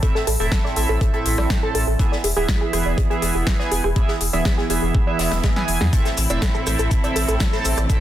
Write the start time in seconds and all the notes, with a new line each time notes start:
0.03 A2 C4 E4 A4 E5, kick, closed hi-hat
0.15 A4, snare
0.27 A1 A4, closed hi-hat, open hi-hat
0.40 E1 A2 C4 E4 A4 E5, closed hi-hat
0.52 kick, snare, closed hi-hat
0.65 D5, snare
0.76 A1 A2 C4 E4 A4 E5, closed hi-hat, open hi-hat
0.89 A1 A4
1.01 A4, kick, closed hi-hat
1.14 A2 C4 E4 A4 E5, closed hi-hat
1.26 A1, closed hi-hat, open hi-hat
1.38 A1 D5, cross-stick, snare
1.50 A4, kick, snare, closed hi-hat
1.63 A2 C4 E4 A4 A5
1.75 A1 A4, closed hi-hat, open hi-hat
1.87 A1 A4
1.99 E3 B3 E4 G#4 E5, kick, closed hi-hat
2.12 D5, snare
2.24 E1 G#4, closed hi-hat, open hi-hat
2.37 D1 E3 B3 E4 G#4 E5
2.48 G#4, kick, snare, closed hi-hat
2.61 G#4
2.73 E1 E3 B3 E4 G#4 E5, cross-stick, closed hi-hat, open hi-hat
2.86 E1 D5
2.98 G#4, kick, closed hi-hat
3.10 E3 B3 E4 G#4 E5, closed hi-hat
3.22 E1 G#4, closed hi-hat, open hi-hat
3.35 E1 G#4
3.47 kick, snare, closed hi-hat
3.59 E3 B3 E4 G#4 D5 G#5, snare
3.72 E1 G#4, closed hi-hat, open hi-hat
3.84 E1 G#4, cross-stick
3.96 E3 B3 E4 G#4 E5, kick, closed hi-hat
4.08 G#4, snare
4.21 E1, closed hi-hat, open hi-hat
4.33 D1 E3 B3 E4 G#4 D5 E5, closed hi-hat
4.45 G#4, kick, snare, closed hi-hat
4.58 G#4, snare
4.70 E1 E3 B3 E4 G#4 E5, closed hi-hat, open hi-hat
4.82 E1 G#4
4.95 kick
5.07 E3 B3 E4 G#4 D5 E5
5.19 E1 E5, snare, closed hi-hat, open hi-hat
5.32 E1 E5, cross-stick, snare, closed hi-hat
5.43 G#3, kick, snare, closed hi-hat
5.56 E3 B3 E4 G#4 G#5, snare
5.68 E1, closed hi-hat, open hi-hat
5.81 E2 G#4, snare
5.93 A2 C3 E3 C4 E4 A4 E5, kick, closed hi-hat, maracas
6.05 A4, snare, closed hi-hat, maracas
6.17 A1, closed hi-hat, open hi-hat, maracas
6.30 E1 A2 C4 E4 A4 D5 E5, closed hi-hat, maracas
6.42 A4, kick, snare, closed hi-hat, maracas
6.55 A4, maracas
6.67 A1 A2 C4 E4 A4 E5, cross-stick, closed hi-hat, open hi-hat, maracas
6.79 A1 A4, closed hi-hat, maracas
6.91 kick, closed hi-hat, maracas
7.04 A2 C4 E4 A4 D5 E5, closed hi-hat, maracas
7.16 A1 A4, closed hi-hat, open hi-hat, maracas
7.28 A1 A4, closed hi-hat, maracas
7.40 A4, kick, snare, closed hi-hat, maracas
7.53 A2 C4 E4 A4 A5, snare, maracas
7.65 A1, closed hi-hat, open hi-hat, maracas
7.78 A1 D5, cross-stick, closed hi-hat, maracas
7.89 A2 C4 D4 E4 A4 E5, kick, closed hi-hat, maracas